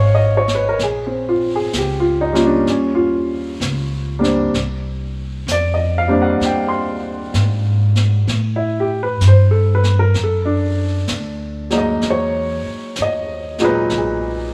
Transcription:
0.00 0.77 G#1 medium
0.00 0.20 C#5 medium
0.00 0.15 D#5 medium
0.00 0.81 F5 medium
0.00 0.81 F#5 medium
0.00 0.81 G#5 medium
0.15 0.46 D#5 medium
0.37 0.42 C#5 medium
0.48 snare soft
0.55 0.72 B4 soft
0.69 0.79 A#4 soft
0.79 1.70 A#1 medium
0.79 brush sweep soft
0.79 snare soft
0.83 1.12 G#4 medium
1.07 1.39 C4 soft
1.29 1.50 F4 medium
1.56 1.71 G#4 medium
1.73 2.64 C#2 medium
1.73 snare soft
1.73 hi-hat pedal soft
1.78 2.06 G4 medium
2.00 2.32 F4 medium
2.21 2.43 D#4 medium
2.33 3.52 G3 soft
2.33 3.53 A#3 soft
2.33 2.69 C#4 soft
2.33 2.93 F4 medium
2.33 snare soft
2.45 2.63 D4 medium
2.67 3.58 D#2 medium
2.67 2.99 C#4 soft
2.67 brush sweep soft
2.67 snare soft
2.95 3.14 F4 medium
3.60 4.51 C#2 medium
3.60 snare soft
3.60 hi-hat pedal soft
4.19 4.49 G3 soft
4.19 4.49 A#3 soft
4.19 4.50 C4 soft
4.19 4.50 D4 medium
4.23 snare soft
4.54 5.45 C2 medium
4.54 brush sweep soft
4.54 snare soft
5.47 6.38 F2 medium
5.47 snare soft
5.47 hi-hat pedal soft
5.52 5.80 D5 medium
5.74 6.06 D#5 medium
5.98 6.19 F5 medium
6.08 6.37 G3 medium
6.08 6.37 A#3 soft
6.08 6.37 C4 medium
6.08 6.38 D4 medium
6.22 6.39 F#5 medium
6.40 7.31 D#2 medium
6.40 brush sweep soft
6.40 snare soft
6.45 6.73 G5 medium
6.68 6.88 C6 medium
7.34 8.25 G#2 medium
7.34 snare soft
7.34 hi-hat pedal soft
7.96 snare soft
8.27 9.19 A2 medium
8.27 brush sweep soft
8.27 snare soft
8.56 8.88 E4 medium
8.80 9.00 G4 medium
9.03 9.20 B4 medium
9.21 10.12 G2 medium
9.21 snare soft
9.21 hi-hat pedal soft
9.28 9.55 C5 medium
9.51 9.82 A4 medium
9.75 9.94 B4 medium
9.84 snare soft
9.99 10.15 A#4 medium
10.14 11.06 F#2 medium
10.14 brush sweep soft
10.14 snare soft
10.23 10.50 A4 medium
10.45 10.65 D4 medium
11.08 12.00 D2 medium
11.08 snare soft
11.08 hi-hat pedal soft
11.70 12.90 F#3 soft
11.70 12.90 G#3 soft
11.70 12.91 A#3 soft
11.70 12.91 D#4 medium
11.70 snare soft
11.78 12.05 D#5 medium
12.01 12.62 E2 medium
12.01 brush sweep soft
12.01 snare soft
12.10 12.97 C#5 soft
12.67 muted upright bass stroke soft
12.96 13.89 D#2 medium
12.96 snare soft
12.96 hi-hat pedal soft
13.02 13.60 D#5 medium
13.58 13.88 A#2 medium
13.58 13.88 F#3 medium
13.58 13.88 G#3 medium
13.58 13.89 D#4 medium
13.58 snare soft
13.64 13.92 B4 medium
13.90 14.54 B1 medium
13.90 brush sweep soft
13.90 snare soft
13.98 14.54 G#4 soft

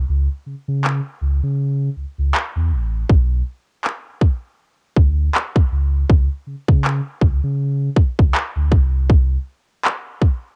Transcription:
0.09 0.28 C#2 loud
0.46 0.55 C#3 soft
0.68 1.01 C#3 medium
0.84 clap loud
1.21 1.40 C#2 medium
1.43 1.90 C#3 medium
1.96 2.05 C#2 soft
2.18 2.32 C#2 medium
2.35 clap loud
2.56 2.73 E2 medium
2.71 3.04 A1 medium
3.09 3.42 B1 loud
3.09 kick loud
3.84 clap loud
4.21 kick medium
4.96 5.29 D2 medium
4.96 kick medium
5.35 clap loud
5.56 kick medium
5.72 6.04 C#2 medium
6.09 6.28 C#2 loud
6.09 kick loud
6.47 6.55 C#3 soft
6.68 7.01 C#3 loud
6.68 kick medium
6.84 clap loud
7.21 7.40 C#2 medium
7.21 kick medium
7.43 7.90 C#3 medium
7.97 8.05 C#2 soft
7.97 kick medium
8.19 8.33 C#2 medium
8.19 kick medium
8.35 clap loud
8.56 8.73 D2 medium
8.72 9.37 C2 loud
8.72 kick medium
9.10 kick loud
9.85 clap loud
10.22 kick medium

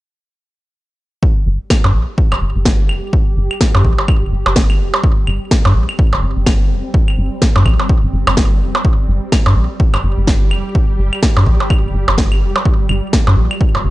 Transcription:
1.23 13.90 G3 medium
1.23 5.06 G4 medium
1.23 kick loud
1.46 1.58 G1 loud
1.70 kick loud
1.70 snare medium
1.70 claves medium
1.84 1.92 G2 medium
1.84 percussion blips medium
1.94 2.05 A#1 medium
2.18 kick loud
2.32 2.40 G1 medium
2.32 claves medium
2.32 percussion blips medium
2.42 2.53 G1 medium
2.56 2.91 G1 loud
2.65 kick loud
2.65 snare medium
2.89 3.01 F1 medium
2.89 claves medium
3.13 kick loud
3.37 3.48 G1 medium
3.51 claves medium
3.61 kick loud
3.61 snare loud
3.75 3.83 G2 medium
3.75 percussion blips medium
3.84 3.96 A#1 medium
3.84 kick medium
3.98 percussion blips soft
4.08 kick loud
4.08 claves medium
4.22 4.30 G1 medium
4.32 4.43 G1 medium
4.46 4.81 G1 medium
4.46 percussion blips medium
4.56 kick loud
4.56 snare medium
4.70 claves medium
4.80 4.91 F1 loud
4.94 percussion blips medium
5.03 8.87 C4 medium
5.03 kick loud
5.27 5.39 G1 loud
5.27 claves medium
5.51 kick loud
5.51 snare medium
5.65 5.73 G2 medium
5.65 percussion blips medium
5.75 5.86 A#1 medium
5.89 claves medium
5.99 kick loud
6.13 6.21 G1 medium
6.13 percussion blips medium
6.23 6.34 G1 medium
6.37 6.72 G1 medium
6.46 kick loud
6.46 snare medium
6.46 claves medium
6.70 6.82 F1 loud
6.94 kick loud
7.08 claves medium
7.18 7.29 G1 loud
7.42 kick loud
7.42 snare medium
7.56 7.64 G2 medium
7.56 percussion blips medium
7.66 7.77 A#1 medium
7.66 kick medium
7.66 claves medium
7.80 percussion blips soft
7.89 kick loud
8.03 8.11 G1 medium
8.13 8.24 G1 medium
8.27 8.62 G1 loud
8.27 claves medium
8.27 percussion blips medium
8.37 kick loud
8.37 snare medium
8.61 8.72 F1 loud
8.75 percussion blips medium
8.85 12.68 G4 medium
8.85 kick loud
9.08 9.20 G1 loud
9.32 kick loud
9.32 snare medium
9.32 claves medium
9.46 9.54 G2 medium
9.46 percussion blips medium
9.56 9.67 A#1 medium
9.80 kick loud
9.94 10.02 G1 medium
9.94 claves medium
9.94 percussion blips medium
10.04 10.15 G1 medium
10.18 10.53 G1 loud
10.27 kick loud
10.27 snare medium
10.51 10.63 F1 loud
10.51 claves medium
10.75 kick loud
10.99 11.10 G1 loud
11.13 claves medium
11.23 kick loud
11.23 snare medium
11.37 11.45 G2 medium
11.37 percussion blips medium
11.46 11.58 A#1 medium
11.46 kick medium
11.60 percussion blips soft
11.70 kick loud
11.70 claves medium
11.84 11.92 G1 medium
11.94 12.05 G1 medium
12.08 12.43 G1 loud
12.08 percussion blips medium
12.18 kick loud
12.18 snare medium
12.32 claves medium
12.42 12.53 F1 loud
12.56 percussion blips medium
12.65 13.90 F4 medium
12.65 kick loud
12.89 13.01 G1 medium
12.89 claves medium
13.13 kick loud
13.13 snare medium
13.27 13.35 G2 medium
13.27 percussion blips medium
13.37 13.48 A#1 medium
13.51 claves medium
13.61 kick loud
13.75 13.83 G1 medium
13.75 percussion blips medium
13.85 13.90 G1 medium

